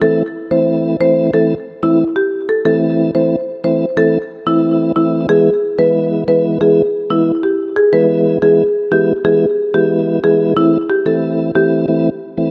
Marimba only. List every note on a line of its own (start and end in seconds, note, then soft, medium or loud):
0.02 0.31 A4 loud
0.51 0.80 C5 medium
1.01 1.30 C5 medium
1.34 1.48 A4 medium
1.83 1.97 E4 medium
2.16 2.30 G4 medium
2.49 2.63 A4 medium
2.65 2.94 A4 medium
3.15 3.44 C5 medium
3.64 3.93 C5 medium
3.97 4.12 A4 medium
4.47 4.61 E4 medium
4.96 5.11 E4 medium
5.29 5.58 G#4 medium
5.79 6.08 B4 medium
6.28 6.57 B4 medium
6.61 6.75 G#4 medium
7.10 7.25 E4 medium
7.43 7.58 G4 medium
7.76 7.91 G#4 medium
7.93 8.22 B4 loud
8.42 8.71 G#4 medium
8.92 9.21 G4 medium
9.25 9.39 G#4 medium
9.74 9.89 G4 medium
10.24 10.38 G#4 medium
10.57 10.71 E4 medium
10.90 11.04 G4 medium
11.06 11.21 A4 medium
11.55 11.70 G4 medium